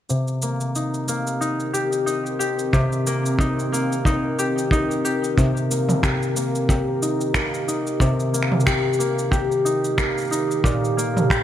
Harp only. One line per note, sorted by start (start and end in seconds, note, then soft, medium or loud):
0.09 2.72 C3 medium
0.42 1.08 A#3 medium
0.76 1.40 D#4 soft
1.08 3.06 A#3 medium
1.41 2.06 D#4 medium
1.73 2.39 G4 medium
2.06 3.39 D#4 medium
2.39 4.38 G4 medium
2.73 5.36 C3 medium
3.07 3.72 A#3 medium
3.40 4.05 D#4 medium
3.72 5.70 A#3 medium
4.05 4.71 D#4 medium
4.39 5.04 G4 medium
4.72 7.02 D#4 medium
5.05 6.03 G4 medium
5.37 7.99 C3 medium
5.70 6.36 A#3 medium
6.03 6.68 G4 medium
6.36 7.35 A#3 medium
6.69 8.65 G4 medium
7.02 7.67 D#4 medium
7.35 8.33 A#3 medium
7.68 9.64 D#4 medium
8.00 10.69 C3 medium
8.33 8.98 A#3 medium
8.66 9.31 G4 medium
8.99 9.97 A#3 medium
9.31 11.30 G4 medium
9.65 10.30 D#4 medium
9.97 10.97 A#3 medium
10.31 11.43 D#4 soft
10.64 11.43 A#2 medium
10.97 11.43 A#3 medium
11.30 11.43 G4 medium